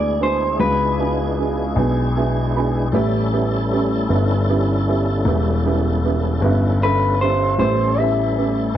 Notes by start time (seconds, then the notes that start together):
Already playing: D2 G#3 B3 D4 E4 F#4 G#4 D5
0.20 B3 D4 F#4 G#4 C5
0.58 C#2 B3 D4 F#4 G#4 B4
0.99 B3 D4 F#4 G#4
1.38 B3 D4 F#4 G#4
1.76 B1 B3 D4 F#4 G#4
2.16 B3 D4 F#4 G#4 E5
2.55 B3 D4 F#4 G#4 B5
2.92 A1 G3 B3 C#4 E4 G4 A4
3.32 B3 C#4 E4 G4
3.71 B3 C#4 E4 G4
4.09 G1 B3 C#4 E4 G4
4.49 B3 C#4 E4 G4
4.88 B3 C#4 E4 G4
5.25 E1 B3 C#4 E4 G4
5.65 B3 C#4 E4 G4
6.04 B3 C#4 E4 G4
6.41 G1 B3 C#4 E4 G4
6.83 B3 C#4 E4 A4 B4
7.21 B3 C#4 E4 G4 C5
7.58 A1 G3 B3 C#4 E4 G4 A4 C5
7.97 B3 C#4 E4 G4 E5
8.37 B3 C#4 E4 G4